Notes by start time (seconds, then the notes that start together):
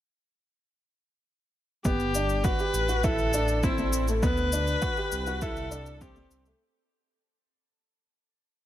1.84 G1 B3 G4, kick, shaker
2.00 shaker
2.14 D4, shaker
2.29 shaker
2.44 F#4 B4, kick, shaker
2.59 G4, shaker
2.74 A1, shaker
2.89 F#4, shaker
3.04 E4 A4, kick, shaker
3.18 shaker
3.33 D4, shaker
3.48 shaker
3.63 C4 E4, kick, shaker
3.78 C4, shaker
3.93 shaker
4.08 A3, shaker
4.22 D2 B3 B4, kick, shaker
4.37 shaker
4.52 D4, shaker
4.67 shaker
4.82 F#4, kick, shaker
4.97 G4, shaker
5.12 C2, shaker
5.27 F#4, shaker
5.41 E4 A4, kick, shaker
5.56 shaker
5.71 D4, shaker
5.86 shaker
6.01 C4 G4, kick, shaker
6.16 C4, shaker
6.31 C2, shaker
6.46 A3, shaker